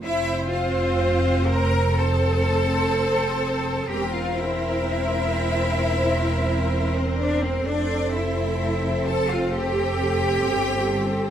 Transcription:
<<
  \new Staff \with { instrumentName = "Violin section" } { \time 4/4 \key f \major \tempo 4 = 63 e''8 f''4 bes''8 a''2 | g''16 f''16 e''2~ e''8. c''16 d''16 c''16 | d''8 e''4 a''16 f''16 g''2 | }
  \new Staff \with { instrumentName = "Violin section" } { \time 4/4 \key f \major c''2 c''2 | c''1 | c''1 | }
  \new Staff \with { instrumentName = "Cello section" } { \time 4/4 \key f \major e'8 f'4 bes'8 a'2 | g'16 f'16 e'2~ e'8. c'16 d'16 c'16 | d'8 e'4 a'16 f'16 g'2 | }
  \new Staff \with { instrumentName = "Viola section" } { \time 4/4 \key f \major <c' c''>2 <c' c''>2 | <c' bes'>1 | <c' a'>1 | }
  \new Staff \with { instrumentName = "Double bass section" } { \clef bass \time 4/4 \key f \major f,,1 | e,,1 | f,,2. g,,4 | }
>>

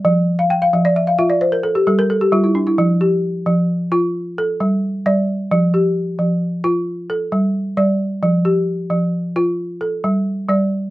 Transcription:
<<
  \new Staff \with { instrumentName = "Balafon" } { \time 12/8 \key f \major \tempo 4. = 88 d''8 r16 f''16 g''16 f''16 e''16 d''16 e''16 f''16 e''16 d''16 c''16 bes'16 a'16 g'16 a'16 bes'16 a'16 g'16 f'16 e'16 d'16 e'16~ | e'16 r16 g'4. r4. a'4. d''4~ | d''8 g'4. r4. a'4. d''4~ | d''8 g'4. r4. a'4. d''4 | }
  \new Staff \with { instrumentName = "Balafon" } { \clef bass \time 12/8 \key f \major f4 r8 f4 f'8 r4 g4 g4 | f4 r8 f4 f'8 r4 g4 g4 | f4 r8 f4 f'8 r4 g4 g4 | f4 r8 f4 f'8 r4 g4 g4 | }
>>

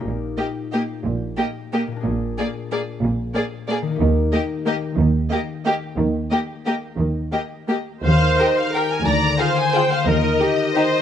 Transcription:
<<
  \new Staff \with { instrumentName = "Violin section" } { \time 3/4 \key ees \major \tempo 4 = 180 r4 ees''4 ees''4 | r4 ees''4 ees''4 | r4 d''4 d''4 | r4 d''4 d''4 |
r4 ees''4 ees''4 | r4 ees''4 ees''4 | r4 ees''4 ees''4 | r4 ees''4 ees''4 |
f''4 ees''8 f''8 g''8 aes''8 | bes''4 f''8 aes''8 g''8 f''8 | ees''2. | }
  \new Staff \with { instrumentName = "Violin section" } { \time 3/4 \key ees \major r4 g'4 g'4 | r4 g'4 g'4 | r4 aes'4 aes'4 | r4 aes'4 aes'4 |
r4 g'4 g'4 | r4 g'4 g'4 | r4 g'4 g'4 | r4 g'4 g'4 |
r4 <g' bes'>4 <g' bes'>4 | r4 <f' aes'>4 <f' aes'>4 | r4 <ees' g'>4 <ees' g'>4 | }
  \new Staff \with { instrumentName = "Harp" } { \time 3/4 \key ees \major <bes, bes ees' g'>2.~ | <bes, bes ees' g'>2. | <bes, bes d' aes'>2.~ | <bes, bes d' aes'>2. |
<ees bes ees' g'>2.~ | <ees bes ees' g'>2.~ | <ees bes ees' g'>2.~ | <ees bes ees' g'>2. |
ees8 ees'8 g'8 bes'8 g'8 ees'8 | d8 bes8 f'8 aes'8 f'8 bes8 | ees8 ees'8 g'8 bes'8 g'8 ees'8 | }
  \new Staff \with { instrumentName = "Viola section" } { \time 3/4 \key ees \major r4 bes4 bes4 | r4 bes4 bes4 | r4 bes4 bes4 | r4 bes4 bes4 |
r4 bes4 bes4 | r4 bes4 bes4 | r4 bes4 bes4 | r4 bes4 bes4 |
c''2 bes'4 | d''4 c''2 | bes'4 g'4 c''4 | }
  \new Staff \with { instrumentName = "Cello section" } { \clef bass \time 3/4 \key ees \major bes,4 r2 | bes,4 r2 | bes,4 r2 | bes,4 r2 |
ees4 r2 | ees4 r2 | ees4 r2 | ees4 r2 |
ees,4 r2 | d,4 r2 | ees,4 r2 | }
  \new Staff \with { instrumentName = "Double bass section" } { \clef bass \time 3/4 \key ees \major bes,,4 r2 | bes,,4 r2 | bes,,4 r2 | bes,,4 r2 |
ees,4 r2 | ees,4 r2 | ees,4 r2 | ees,4 r2 |
ees,4 r2 | d,4 r2 | ees,4 r2 | }
>>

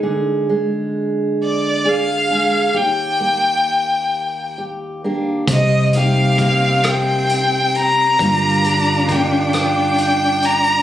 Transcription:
<<
  \new Staff \with { instrumentName = "Violin" } { \time 6/8 \key c \minor \tempo 4. = 44 r4. d''8 f''4 | g''2 r4 | ees''8 f''4 g''4 bes''8~ | bes''4 g''8 g''4 bes''8 | }
  \new Staff \with { instrumentName = "Cello" } { \time 6/8 \key c \minor r2. | r2. | c'2. | d'2. | }
  \new Staff \with { instrumentName = "Steel-string acoustic guitar" } { \time 6/8 \key c \minor << { <aes aes'>8 aes4. aes'8 <aes d' aes'>8 | g'8 bes4. g'8 <bes d' g'>8 | r8 <bes ees' g'>8 bes2 | <g bes d' f'>8 <bes d' f'>8 bes2 | } \\ { d2. | ees,2. | c2. | g,2. | } >> }
  \new Staff \with { instrumentName = "Fretless electric bass" } { \clef bass \time 6/8 \key c \minor r2. | r2. | c,2. | g,,2. | }
  \new DrumStaff \with { instrumentName = "Drums" } \drummode { \time 6/8 r4. r4. | r4. r4. | <hh bd>8 hh8 <hh bd>8 <hh ss>8 hh8 hh8 | <hh bd>8 hh8 <hh bd>8 <hh ss>8 hh8 hh8 | }
>>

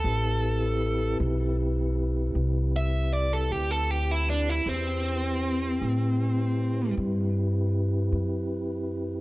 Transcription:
<<
  \new Staff \with { instrumentName = "Overdriven electric guitar" } { \time 12/8 \key a \dorian \tempo 4. = 52 a'4. r2 e''8 d''16 a'16 g'16 a'16 g'16 e'16 d'16 e'16 | c'2. r2. | }
  \new Staff \with { instrumentName = "Tonewheel organ" } { \time 12/8 \key a \dorian <c' e' g' b'>1. | <c' e' g' b'>1. | }
  \new Staff \with { instrumentName = "Upright bass" } { \clef bass \time 12/8 \key a \dorian a,,4. b,,4. c,4. d,4. | e,4. a,4. g,4. fis,4. | }
>>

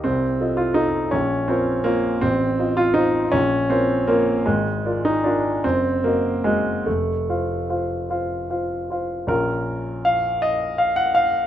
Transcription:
\new Staff \with { instrumentName = "Grand piano" } { \time 6/8 \key bes \minor \tempo 4. = 53 << { c,8 <f' a' ees''>8 <f' a' ees''>8 bes,,8 <f' bes' des''>8 <f' bes' des''>8 | a,,8 <f' c'' ees''>8 <f' c'' ees''>8 bes,,8 <f' bes' des''>8 <f' bes' des''>8 | aes,,8 <f' bes' d''>8 <f' bes' d''>8 ges,,8 <ges' bes' ees''>8 <ges' bes' ees''>8 | f,,8 <f' c'' f''>8 <f' c'' f''>8 <f' c'' f''>8 <f' c'' f''>8 <f' c'' f''>8 |
<bes,, des' f'>2. | } \\ { c'8. f'16 ees'8 des'8 c'8 bes8 | c'8. f'16 ees'8 des'8 c'8 bes8 | aes8. ees'16 d'8 c'8 bes8 aes8 | a4. r4. |
bes'4 f''8 ees''8 f''16 ges''16 f''8 | } >> }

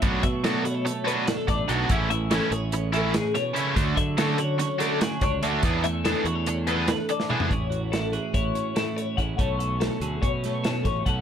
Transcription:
<<
  \new Staff \with { instrumentName = "Clean electric guitar" } { \time 9/8 \key a \major \tempo 4. = 96 r8 e''8 a'8 cis''4 b'8 a'8 d''8 fis''8 | r8 e''8 a'8 cis''4 a'8 gis'8 cis''8 e''8 | r8 e''8 a'8 cis''4 a'8 gis'8 cis''8 e''8 | r8 e''8 a'8 cis''4 b'8 a'8 d''8 e''8 |
cis''4 a'8 gis'8 cis''4 a'8 cis''8 fis''8 | cis''4 a'8 gis'8 cis''4 a'8 cis''8 fis''8 | }
  \new Staff \with { instrumentName = "Clean electric guitar" } { \time 9/8 \key a \major << { a4 a8 fis'16 a'16 a8 d'8 fis'16 a'16 d'4 | <e cis' e' gis'>4 cis'8 gis'8 cis'8 e'2 | r4 cis'8 fis'8 cis'8 d'8 fis'8 d'4 | r4 d'8 fis'16 a'16 d'8 a'8 b'8 a'4 |
<cis' e' gis'>8 fis'8 e'8 fis'8 e'8 cis'8 e'4 <cis' e' gis'>8 | <a cis' a'>8 a'8 cis'8 a'8 cis'8 a8 cis'4 <a cis' a'>8 | } \\ { b,8 fis2.~ fis8 b,8 | a,8 e2~ e8 a,8 b,8 cis8 | d8 fis2.~ fis8 d8 | e8 a2.~ a8 e8 |
a,4. e4. a,4 a,8 | b,4. fis4. fis,4 b,8 | } >> }
  \new Staff \with { instrumentName = "Overdriven electric guitar" } { \time 9/8 \key a \major <fis b d' fis'>8 r8 <fis b d' fis'>8 r4 <fis b d' fis'>8 r4 <fis b d' fis'>8 | <e a cis' e'>8 r8 <e a cis' e'>8 r4 <e a cis' e'>8 r4 <e a cis' e'>8 | <d a d' fis'>8 r8 <d a d' fis'>8 r4 <d a d' fis'>8 r4 <d a d' fis'>8 | <e b d' gis'>8 r8 <e b d' gis'>8 r4 <e b d' gis'>8 r4 <e b d' gis'>8 |
r1 r8 | r1 r8 | }
  \new Staff \with { instrumentName = "Fingered electric bass" } { \clef bass \time 9/8 \key a \major b,,8 b,2 r4 a,,8 b,,8 | a,,4. a,,2 r4 | d,8 d2 r4 cis,8 d,8 | e,4. e,2 r4 |
a,,2 a,,8 r4. a,,8 | b,,4. d,8 b,4. a,,8 b,,8 | }
  \new DrumStaff \with { instrumentName = "Drums" } \drummode { \time 9/8 <hh bd>8 <hh bd>8 <hh sn>8 hh8 hh8 hh8 <hh sn>8 <hh bd sn>8 <hh sn>8 | <hh bd>8 hh8 <hh sn>8 hh8 hh8 hh8 <hh sn>8 <hh sn>8 hh8 | <hh bd>8 <hh bd>8 <hh sn>8 hh8 <hh sn>8 <hh sn>8 <hh sn>8 <hh bd>8 hh8 | <hh bd>8 hh8 <hh sn>8 hh8 hh8 hh8 <hh sn>8 hh16 sn16 toml16 tomfh16 |
<hh bd>8 hh8 <hh sn>8 hh8 <hh bd>8 hh8 <hh sn>8 hh8 <hh bd>8 | <hh bd>8 hh8 <hh sn>8 hh8 <hh bd>8 <hh sn>8 <hh sn>8 <hh bd sn>8 <hh bd>8 | }
>>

